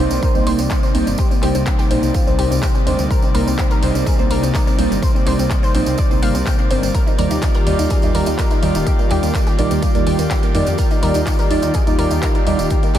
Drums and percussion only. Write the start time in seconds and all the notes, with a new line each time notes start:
0.11 tambourine
0.23 kick, tambourine
0.35 tambourine
0.47 open hi-hat
0.59 tambourine
0.70 kick, clap, tambourine
0.83 tambourine
0.95 open hi-hat
1.07 tambourine
1.18 kick, tambourine
1.31 tambourine
1.43 clap, open hi-hat
1.55 tambourine
1.66 kick, clap, tambourine
1.79 tambourine
1.91 open hi-hat
2.03 tambourine
2.14 kick, tambourine
2.27 tambourine
2.39 open hi-hat
2.52 tambourine
2.63 kick, clap, tambourine
2.75 tambourine
2.87 open hi-hat
2.99 tambourine
3.11 kick, tambourine
3.22 tambourine
3.35 open hi-hat
3.48 tambourine
3.59 kick, clap, tambourine
3.71 tambourine
3.83 open hi-hat
3.95 tambourine
4.07 kick, tambourine
4.19 tambourine
4.31 open hi-hat
4.43 tambourine
4.55 kick, clap, tambourine
4.67 tambourine
4.79 open hi-hat
4.92 tambourine
5.03 kick, tambourine
5.16 tambourine
5.27 clap, open hi-hat
5.39 tambourine
5.50 kick, clap, tambourine
5.64 tambourine
5.75 open hi-hat
5.86 tambourine
5.98 kick, tambourine
6.11 tambourine
6.23 open hi-hat
6.35 tambourine
6.46 kick, clap, tambourine
6.59 tambourine
6.71 open hi-hat
6.83 tambourine
6.95 kick, closed hi-hat, tambourine
7.07 tambourine
7.19 open hi-hat
7.31 closed hi-hat, tambourine
7.42 kick, clap, closed hi-hat, tambourine
7.54 tambourine
7.67 open hi-hat
7.79 closed hi-hat, tambourine
7.90 kick, closed hi-hat, tambourine
8.02 closed hi-hat, tambourine
8.15 open hi-hat
8.26 closed hi-hat, tambourine
8.39 kick, clap, closed hi-hat, tambourine
8.51 closed hi-hat, tambourine
8.63 open hi-hat
8.75 closed hi-hat, tambourine
8.87 kick, closed hi-hat, tambourine
8.99 tambourine
9.11 clap, open hi-hat
9.23 closed hi-hat, tambourine
9.35 kick, clap, closed hi-hat, tambourine
9.47 tambourine
9.59 open hi-hat
9.71 closed hi-hat, tambourine
9.82 kick, closed hi-hat, tambourine
9.95 closed hi-hat, tambourine
10.07 open hi-hat
10.19 closed hi-hat, tambourine
10.31 kick, clap, closed hi-hat, tambourine
10.43 closed hi-hat, tambourine
10.55 open hi-hat
10.67 closed hi-hat, tambourine
10.78 kick, closed hi-hat, tambourine
10.91 tambourine
11.03 open hi-hat
11.14 closed hi-hat, tambourine
11.27 kick, clap, closed hi-hat, tambourine
11.39 tambourine
11.51 open hi-hat
11.62 closed hi-hat, tambourine
11.74 kick, closed hi-hat, tambourine
11.87 closed hi-hat, tambourine
11.99 open hi-hat
12.11 closed hi-hat, tambourine
12.23 kick, clap, closed hi-hat, tambourine
12.35 closed hi-hat, tambourine
12.47 open hi-hat
12.59 closed hi-hat, tambourine
12.70 kick, closed hi-hat, tambourine
12.83 closed hi-hat, tambourine
12.95 clap, open hi-hat